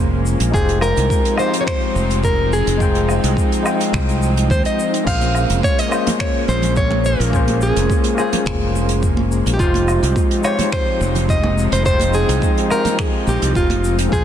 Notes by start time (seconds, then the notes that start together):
Already playing: F1 G#3 A#3 C#4 F4 G#4 C5
0.26 shaker
0.40 A#1, closed hi-hat, shaker
0.51 F1 F3 G#3 C4 D#4 F4 G#4, kick
0.55 G4 C5, shaker
0.68 closed hi-hat
0.81 A#4, low woodblock, shaker
0.97 C2, closed hi-hat, shaker
1.10 kick, shaker
1.25 closed hi-hat
1.36 G#3 D#4 F4 G4 C5, low woodblock, shaker
1.41 C5
1.54 closed hi-hat, shaker
1.61 C#5
1.67 C5, finger snap, kick, shaker
1.96 F1, shaker
2.10 closed hi-hat, shaker
2.24 A#4, kick, shaker
2.53 G#4, shaker
2.67 F1, closed hi-hat, shaker
2.77 G#3 D#4 F4, kick, shaker
2.82 C5 G5
2.95 closed hi-hat
3.09 low woodblock, shaker
3.24 C2, closed hi-hat, shaker
3.37 kick, shaker
3.52 closed hi-hat, shaker
3.63 G#3 D#4 F4 G5, low woodblock, shaker
3.68 C5
3.80 closed hi-hat, shaker
3.93 C2, finger snap, kick, shaker
4.09 closed hi-hat, shaker
4.23 shaker
4.37 closed hi-hat, shaker
4.50 D#2 C5, kick, shaker
4.65 D#5, closed hi-hat, shaker
4.80 shaker
4.94 closed hi-hat, shaker
5.04 A#1 G#3 A#3 C#4 F4 G#4 F5, kick, crash
5.08 C5, shaker
5.21 closed hi-hat, high conga
5.35 low woodblock, shaker
5.50 F1, closed hi-hat, shaker
5.63 C#5, kick, high conga, shaker
5.78 D#5, closed hi-hat
5.88 A#3 C#4 F4, low woodblock, shaker
5.92 G#4 C5
6.07 closed hi-hat, high conga, low conga, shaker
6.20 C#5, finger snap, kick, shaker
6.48 A#1 C5, high conga, shaker
6.62 closed hi-hat, low conga, shaker
6.76 C#5, kick, shaker
6.91 high bongo, high conga
7.05 A#4, shaker
7.20 A#1, closed hi-hat, shaker
7.30 A#3 C#4 F4, kick, shaker
7.34 G#4 C5
7.48 closed hi-hat, high conga
7.61 G#4, shaker
7.76 F1, closed hi-hat, shaker
7.90 kick, high conga, shaker
8.04 closed hi-hat
8.15 A#3 C#4 F4, low woodblock, shaker
8.19 G#4 C5
8.33 closed hi-hat, high conga, low conga, shaker
8.46 F1, finger snap, kick, shaker
8.75 high conga, shaker
8.89 closed hi-hat, shaker
9.03 kick, shaker
9.17 high conga
9.32 shaker
9.46 A#1, closed hi-hat, shaker
9.54 G#3 G4
9.58 F1 F3 G#3 C4 D#4 F4 G4, kick, shaker
9.62 C5
9.74 closed hi-hat, high conga
9.88 low woodblock, shaker
10.03 C2, closed hi-hat, shaker
10.16 kick, high conga, shaker
10.31 closed hi-hat
10.41 G#3 D#4 F4 C#5, low woodblock, shaker
10.46 G4 C5
10.59 closed hi-hat, high conga, low conga, shaker
10.72 C5, finger snap, kick, shaker
11.01 F1, high conga, shaker
11.15 closed hi-hat, low conga, shaker
11.29 D#5, kick, shaker
11.44 high bongo, high conga
11.58 shaker
11.72 F1 C5, closed hi-hat, shaker
11.82 G#3 D#4 F4 C5, kick, shaker
11.87 C5 G5
12.00 closed hi-hat, high conga, shaker
12.14 G#4, shaker
12.29 C2, closed hi-hat, shaker
12.42 kick, high conga, shaker
12.58 closed hi-hat
12.68 G#3 D#4 F4 A#4, low woodblock, shaker
12.72 G4 C5
12.85 closed hi-hat, high conga, low conga, shaker
12.99 G#4, finger snap, kick, shaker
13.27 A#1 G4, high conga, shaker
13.42 C2, closed hi-hat, shaker
13.55 F1 F4, kick, shaker
13.70 closed hi-hat, high conga
13.84 shaker
13.99 closed hi-hat, shaker
14.09 A#1 G#3 A#3 C#4 F4 G#4, kick
14.13 G#4 C5, shaker